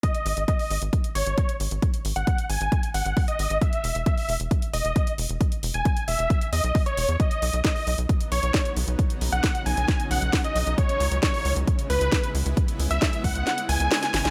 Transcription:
0.03 supersaw synth D#5, kick, closed hi-hat
0.15 closed hi-hat
0.26 analog synth bass G#1, open hi-hat
0.37 analog synth bass G#1, closed hi-hat
0.48 supersaw synth D#5, kick, closed hi-hat
0.59 open hi-hat
0.70 analog synth bass G#1, open hi-hat
0.82 analog synth bass G#1, closed hi-hat
0.93 kick, closed hi-hat
1.04 closed hi-hat
1.15 analog synth bass G#1, supersaw synth C#5, open hi-hat
1.26 analog synth bass G#1, closed hi-hat
1.38 kick, closed hi-hat
1.49 closed hi-hat
1.60 analog synth bass G#1, open hi-hat
1.71 analog synth bass G#1, closed hi-hat
1.82 kick, closed hi-hat
1.94 closed hi-hat
2.05 analog synth bass G#1, open hi-hat
2.16 analog synth bass G#1, supersaw synth F#5, closed hi-hat
2.27 kick, closed hi-hat
2.38 closed hi-hat
2.50 analog synth bass G#1, supersaw synth G#5, open hi-hat
2.61 analog synth bass G#1, closed hi-hat
2.72 kick, closed hi-hat
2.83 closed hi-hat
2.94 analog synth bass G#1, supersaw synth F#5, open hi-hat
3.06 analog synth bass G#1, closed hi-hat
3.17 kick, open hi-hat
3.28 supersaw synth D#5, closed hi-hat
3.39 analog synth bass G#1, open hi-hat
3.50 analog synth bass G#1, closed hi-hat
3.61 supersaw synth E5, kick, closed hi-hat
3.73 closed hi-hat
3.84 analog synth bass E1, open hi-hat
3.95 analog synth bass E1, closed hi-hat
4.06 supersaw synth E5, kick, closed hi-hat
4.18 open hi-hat
4.29 analog synth bass E1, open hi-hat
4.40 analog synth bass E1, closed hi-hat
4.51 kick, closed hi-hat
4.62 closed hi-hat
4.73 analog synth bass E1, supersaw synth D#5, open hi-hat
4.85 analog synth bass E1, closed hi-hat
4.96 kick, closed hi-hat
5.07 closed hi-hat
5.18 analog synth bass E1, open hi-hat
5.29 analog synth bass E1, closed hi-hat
5.41 kick, closed hi-hat
5.52 closed hi-hat
5.63 analog synth bass E1, open hi-hat
5.74 analog synth bass E1, supersaw synth G#5, closed hi-hat
5.85 kick, closed hi-hat
5.97 closed hi-hat
6.08 analog synth bass E1, supersaw synth E5, open hi-hat
6.19 analog synth bass E1, closed hi-hat
6.30 kick, closed hi-hat
6.41 closed hi-hat
6.53 analog synth bass E2, supersaw synth D#5, open hi-hat
6.64 analog synth bass B1, closed hi-hat
6.75 kick, open hi-hat
6.86 supersaw synth C#5, closed hi-hat
6.97 analog synth bass E1, open hi-hat
7.09 analog synth bass E2, closed hi-hat
7.20 ambient pad C#3 F#3 B3 D#4, supersaw synth D#5, kick, closed hi-hat
7.31 closed hi-hat
7.42 analog synth bass B1, open hi-hat
7.53 analog synth bass B1, closed hi-hat
7.65 supersaw synth D#5, kick, snare, closed hi-hat
7.76 open hi-hat
7.87 analog synth bass B1, open hi-hat
7.98 analog synth bass B1, closed hi-hat
8.09 kick, closed hi-hat
8.21 closed hi-hat
8.32 analog synth bass B1, supersaw synth C#5, open hi-hat
8.43 analog synth bass B1, closed hi-hat
8.54 kick, snare, closed hi-hat
8.65 closed hi-hat
8.76 analog synth bass B1, open hi-hat
8.88 analog synth bass B1, closed hi-hat
8.99 ambient pad C#4, kick, closed hi-hat
9.10 closed hi-hat
9.21 analog synth bass B1, open hi-hat
9.32 analog synth bass B1, supersaw synth F#5, closed hi-hat
9.44 kick, snare, closed hi-hat
9.55 closed hi-hat
9.66 analog synth bass B1, supersaw synth G#5, open hi-hat
9.77 analog synth bass B1, closed hi-hat
9.88 kick, snare, closed hi-hat
10.00 closed hi-hat
10.11 analog synth bass B1, supersaw synth F#5, open hi-hat
10.22 analog synth bass B1, closed hi-hat
10.33 kick, snare, open hi-hat
10.44 supersaw synth D#5, closed hi-hat
10.56 analog synth bass B1, open hi-hat
10.67 analog synth bass B1, closed hi-hat
10.78 ambient pad G#3 B3 E4, supersaw synth C#5, kick, closed hi-hat
10.89 closed hi-hat
11.00 analog synth bass C#2, open hi-hat
11.12 analog synth bass C#2, closed hi-hat
11.23 supersaw synth C#5, kick, snare, closed hi-hat
11.34 open hi-hat
11.45 analog synth bass C#2, open hi-hat
11.56 analog synth bass C#2, closed hi-hat
11.67 kick, closed hi-hat
11.79 closed hi-hat
11.90 analog synth bass C#2, supersaw synth B4, open hi-hat
12.01 analog synth bass C#2, closed hi-hat
12.12 kick, snare, closed hi-hat
12.24 closed hi-hat
12.35 analog synth bass C#2, open hi-hat
12.46 analog synth bass C#2, closed hi-hat
12.57 kick, closed hi-hat
12.68 closed hi-hat
12.79 analog synth bass C#2, open hi-hat
12.91 analog synth bass C#2, supersaw synth E5, closed hi-hat
13.02 kick, snare, closed hi-hat
13.13 closed hi-hat
13.24 analog synth bass C#2, supersaw synth F#5, kick, open hi-hat
13.35 analog synth bass C#2, closed hi-hat
13.47 snare, closed hi-hat
13.58 closed hi-hat
13.69 analog synth bass C#2, supersaw synth G#5, open hi-hat
13.80 analog synth bass C#2, closed hi-hat
13.91 snare, open hi-hat
14.02 supersaw synth G#5, snare, closed hi-hat
14.14 analog synth bass G#1, snare, open hi-hat
14.25 analog synth bass B1, snare, closed hi-hat

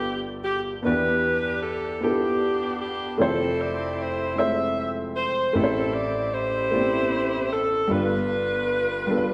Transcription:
Already playing: upright piano G1 G2 B3 D4 F4 G4 A4 D5, saxophone section G4
0.44 saxophone section G4
0.83 upright piano E2 E3 B3 D4 E4 F#4, saxophone section D4 G4 B4
0.87 upright piano D5
0.92 upright piano G4
1.63 saxophone section A4
2.01 upright piano B3 D4 E4 F4 A4, saxophone section B3 D4 G4
2.10 upright piano G4
2.80 saxophone section G4
3.18 upright piano F1 F2 F3 A3 C4 E4 C5, saxophone section C4 E4 A4
3.60 saxophone section D5
3.99 saxophone section C5
4.36 upright piano G#3 C4 E4 F4 C5, saxophone section E5
4.41 upright piano A3
5.16 saxophone section C5
5.53 upright piano A1 A2 A3 C4 E4 G4 B4, saxophone section C4 E4 A4
5.64 upright piano C5
5.93 saxophone section D5
6.33 saxophone section E4 G4 C5
6.70 upright piano A3 B3 E4 G4
6.75 upright piano C4 D5
7.52 saxophone section A4
7.88 upright piano G1 G2 G3 B3 D4 F4 B4, saxophone section D4 F4 B4
9.07 upright piano G3 B3 D4 F4 A4
9.17 upright piano B4

